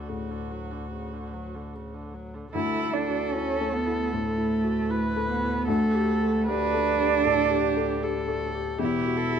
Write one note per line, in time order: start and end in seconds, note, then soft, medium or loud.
0.00 2.50 D2 soft
0.00 2.54 D2 medium
0.00 0.10 D3 soft
0.00 2.15 F#4 medium
0.00 1.70 D5 medium
0.09 2.55 A2 soft
0.09 0.32 C#3 soft
0.30 0.53 D3 soft
0.51 0.73 F#3 soft
0.71 0.92 D3 soft
0.93 1.15 C#3 soft
1.13 1.35 D3 soft
1.34 1.56 F#3 soft
1.55 1.76 D3 soft
1.75 1.95 C#3 soft
1.94 2.15 D3 soft
2.14 2.36 F#3 soft
2.34 2.53 D3 soft
2.54 8.80 D2 medium
2.54 4.08 D2 medium
2.54 2.95 E4 medium
2.54 4.93 A4 medium
2.82 3.24 E4 medium
2.93 3.35 D4 medium
3.08 3.34 F#4 soft
3.33 3.74 C#4 medium
3.33 3.76 E4 medium
3.61 4.02 A3 medium
3.73 4.14 B3 medium
3.87 4.28 E4 medium
4.13 4.54 A2 medium
4.13 5.29 A3 medium
4.38 4.79 E4 medium
4.64 4.90 F#4 soft
4.90 5.31 E4 medium
4.90 5.67 B4 medium
5.16 5.58 A3 medium
5.30 5.70 B3 medium
5.42 5.68 E4 medium
5.67 7.22 D2 medium
5.67 6.50 A3 medium
5.67 6.46 A4 medium
5.94 6.37 G4 medium
6.22 6.48 A4 medium
6.47 8.42 D4 loud
6.47 6.90 G4 medium
6.47 7.24 B4 medium
6.74 7.15 A3 medium
7.00 7.41 G4 medium
7.24 7.67 A2 medium
7.24 7.63 A4 medium
7.50 7.92 G4 medium
7.64 8.05 G4 medium
7.77 8.03 A4 medium
8.03 8.44 G4 medium
8.03 8.80 A4 medium
8.28 8.69 A3 medium
8.54 8.80 G4 medium
8.78 9.40 E1 medium
8.78 9.40 E2 medium
8.78 9.40 E4 loud
8.78 9.18 G4 medium
9.05 9.40 F#4 medium
9.16 9.40 A4 medium
9.30 9.40 G4 soft